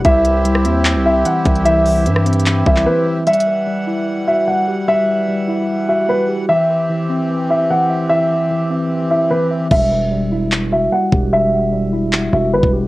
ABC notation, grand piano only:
X:1
M:4/4
L:1/8
Q:1/4=149
K:Em
V:1 name="Grand piano"
e4 z e f2 | e4- e e B z | e4 z e f2 | e4- e e B z |
e4 z e f2 | e4- e e B z | e4 z e f2 | e4- e e B z |]